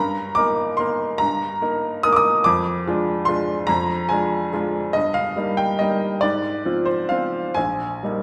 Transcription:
Already playing: G2 A#5
0.35 A#3 D#4 A#4 D6
0.77 A#3 D#4 A#4 C6
1.18 G2 A#5
1.62 A#3 D#4 A#4
2.03 A#3 D#4 A#4 D#6
2.12 D6 D#6
2.44 F2 D6
2.87 G#3 D4 F4
3.25 G#3 D4 F4 C6
3.67 F2 A#5
4.09 G#3 D4 F4 G#5
4.53 G#3 D4 F4
4.93 G2 D#5
5.14 F5
5.36 G3 A#3 D#4
5.57 G5
5.79 G3 A#3 D#4 D#5
6.21 G#2 D5
6.65 F3 C4 F4
6.85 C5
7.09 F3 C4 F4 F5
7.54 A#1 G#5
8.03 G3 A#3 D#4

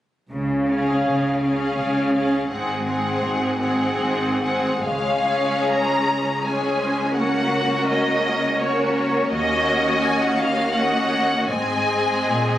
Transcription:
0.32 C#2 C#3
0.70 C#4 G#4 F5
1.07 C#2 C#3
1.44 C#4 G#4 F5
1.79 C#2 C#3
2.15 C#4 G#4 F5
2.50 G#1 G#2 C4 G#4 F#5
2.86 C4 G#4 F#5
3.23 G#1 G#2
3.60 C4 G#4 F#5
4.01 G#1 G#2
4.43 C4 G#4 F#5
4.85 C#2 G#3 C#4 G#4 C#5 F5
5.73 A#5
6.46 G#3 C#4 G#4 C#5 G#5
6.81 C5
7.16 A#3 C#4 F#4 A#4 F#5
7.89 D#5
8.60 A#3 C#4 F#4 A#4 C#5
9.31 D#2 A#3 C#4 F#4 D#5
10.03 G#5
10.21 F#5
10.38 F5
10.74 A#3 C#4 F#4 D#5 F#5
11.49 G#1 G#2 G#3 C4 G#4 D#5 G#5
12.28 A#2

